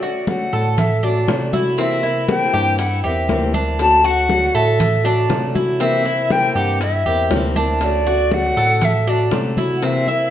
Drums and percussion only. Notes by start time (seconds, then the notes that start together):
0.02 high bongo, high conga, maracas
0.27 high bongo, high conga, maracas
0.53 high bongo, high conga, maracas
0.77 high bongo, high conga, low conga, maracas
1.03 high bongo, high conga, maracas
1.28 high bongo, low bongo, high conga, maracas
1.53 high conga, maracas
1.78 high bongo, high conga, maracas
2.03 high bongo, high conga, maracas
2.29 high bongo, high conga, maracas
2.54 high bongo, maracas
2.78 high bongo, high conga, maracas
3.04 high bongo, high conga, maracas
3.29 high bongo, low bongo, high conga, maracas
3.54 high conga, maracas
3.79 high bongo, high conga, maracas
4.04 high bongo, high conga, maracas
4.29 high bongo, high conga, maracas
4.55 high bongo, high conga, maracas
4.80 high bongo, high conga, low conga, maracas
5.05 high bongo, high conga, maracas
5.30 high bongo, low bongo, high conga, maracas
5.55 high conga, maracas
5.80 high bongo, high conga, maracas
6.05 high bongo, high conga, maracas
6.30 high bongo, high conga, maracas
6.55 high bongo, maracas
6.81 high bongo, high conga, maracas
7.06 high bongo, high conga, maracas
7.31 high bongo, low bongo, high conga, maracas
7.56 high conga, maracas
7.81 high bongo, high conga, maracas
8.06 high bongo, high conga, maracas
8.31 high bongo, high conga, maracas
8.56 high bongo, high conga, maracas
8.82 high bongo, high conga, low conga, maracas
9.06 high bongo, high conga, maracas
9.31 high bongo, low bongo, high conga, maracas
9.57 high conga, maracas
9.82 high bongo, high conga, maracas
10.07 high bongo, high conga, maracas